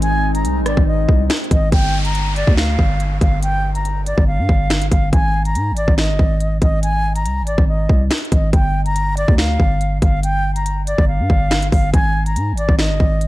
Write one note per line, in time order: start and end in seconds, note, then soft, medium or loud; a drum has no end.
0.00 0.46 G#1 loud
0.00 1.69 G#3 medium
0.00 1.69 C4 medium
0.00 1.69 D#4 loud
0.00 0.33 G#5 loud
0.00 closed hi-hat medium
0.35 0.64 A#5 medium
0.35 closed hi-hat medium
0.45 0.62 C2 loud
0.45 closed hi-hat medium
0.61 0.76 G#1 loud
0.66 0.84 D5 medium
0.66 cross-stick loud
0.66 closed hi-hat medium
0.77 1.07 G#1 loud
0.77 kick loud
0.87 1.22 D#5 medium
1.09 1.29 C2 loud
1.09 kick medium
1.30 finger snap loud
1.30 snare loud
1.30 closed hi-hat medium
1.37 closed hi-hat medium
1.44 closed hi-hat soft
1.51 1.71 G#1 loud
1.51 1.69 D#5 medium
1.51 kick loud
1.51 closed hi-hat medium
1.72 2.44 G1 loud
1.72 2.03 G5 loud
1.72 kick loud
1.72 closed hi-hat medium
1.72 downlifter medium
2.05 2.34 A#5 medium
2.05 closed hi-hat medium
2.15 closed hi-hat medium
2.36 2.54 D5 medium
2.36 closed hi-hat medium
2.47 2.77 D2 loud
2.47 kick loud
2.57 3.17 F5 medium
2.57 finger snap medium
2.57 snare loud
2.79 3.20 G1 loud
2.79 kick medium
3.00 closed hi-hat medium
3.21 4.14 G1 loud
3.21 3.39 F5 medium
3.21 kick loud
3.21 closed hi-hat medium
3.42 3.73 G5 loud
3.42 closed hi-hat medium
3.75 4.04 A#5 medium
3.75 closed hi-hat medium
3.85 closed hi-hat medium
4.06 4.24 D5 medium
4.06 closed hi-hat medium
4.18 4.40 G1 loud
4.18 kick medium
4.27 4.87 F5 medium
4.39 4.48 G2 loud
4.49 4.90 G1 loud
4.49 kick medium
4.70 finger snap medium
4.70 snare loud
4.70 closed hi-hat medium
4.82 closed hi-hat medium
4.91 5.12 G1 loud
4.91 5.10 F5 medium
4.91 kick medium
4.91 closed hi-hat medium
5.13 5.57 G#1 loud
5.13 5.43 G#5 loud
5.13 kick loud
5.13 closed hi-hat medium
5.45 5.75 A#5 medium
5.45 closed hi-hat medium
5.55 5.73 G#2 loud
5.55 closed hi-hat medium
5.72 5.87 G#1 loud
5.77 5.95 D5 medium
5.77 closed hi-hat medium
5.88 6.11 G#1 loud
5.88 kick loud
5.98 6.58 D#5 medium
5.98 finger snap medium
5.98 snare loud
6.09 6.19 G1 loud
6.19 6.60 G#1 loud
6.19 kick medium
6.40 closed hi-hat medium
6.62 7.27 G#1 loud
6.62 6.80 D#5 medium
6.62 kick loud
6.62 closed hi-hat medium
6.83 7.13 G#5 loud
6.83 closed hi-hat medium
7.16 7.45 A#5 medium
7.16 closed hi-hat medium
7.25 7.43 C2 loud
7.25 closed hi-hat medium
7.42 7.57 G#1 loud
7.47 7.65 D5 medium
7.47 closed hi-hat medium
7.58 7.88 G#1 loud
7.58 kick loud
7.68 8.03 D#5 medium
7.89 8.10 C2 loud
7.89 kick medium
8.11 finger snap medium
8.11 snare loud
8.11 closed hi-hat medium
8.18 closed hi-hat medium
8.25 closed hi-hat soft
8.32 8.52 G#1 loud
8.32 8.50 D#5 medium
8.32 kick medium
8.32 closed hi-hat medium
8.53 9.25 G1 loud
8.53 8.84 G5 loud
8.53 kick loud
8.53 closed hi-hat medium
8.86 9.15 A#5 medium
8.86 closed hi-hat medium
8.96 closed hi-hat medium
9.17 9.35 D5 medium
9.17 closed hi-hat medium
9.28 9.58 D2 loud
9.28 kick loud
9.38 9.98 F5 medium
9.38 finger snap medium
9.38 snare loud
9.60 10.00 G1 loud
9.60 kick medium
9.81 closed hi-hat medium
10.02 10.95 G1 loud
10.02 10.20 F5 medium
10.02 kick loud
10.02 closed hi-hat medium
10.23 10.54 G5 loud
10.23 closed hi-hat medium
10.56 10.85 A#5 medium
10.56 closed hi-hat medium
10.66 closed hi-hat medium
10.87 11.05 D5 medium
10.87 closed hi-hat medium
10.98 11.21 G1 loud
10.98 kick medium
11.08 11.68 F5 medium
11.20 11.29 G2 loud
11.30 11.71 G1 loud
11.30 kick medium
11.51 finger snap medium
11.51 snare loud
11.51 closed hi-hat medium
11.62 closed hi-hat medium
11.72 11.93 G1 loud
11.72 11.90 F5 medium
11.72 kick loud
11.72 open hi-hat medium
11.93 12.38 G#1 loud
11.93 12.24 G#5 loud
11.93 kick loud
11.93 closed hi-hat medium
12.26 12.56 A#5 medium
12.26 closed hi-hat medium
12.36 12.54 G#2 loud
12.36 closed hi-hat medium
12.52 12.68 G#1 loud
12.57 12.76 D5 medium
12.57 closed hi-hat medium
12.69 12.91 G#1 loud
12.69 kick medium
12.79 13.28 D#5 medium
12.79 finger snap medium
12.79 snare loud
12.90 12.99 G1 loud
13.00 13.28 G#1 loud
13.00 kick medium
13.21 closed hi-hat medium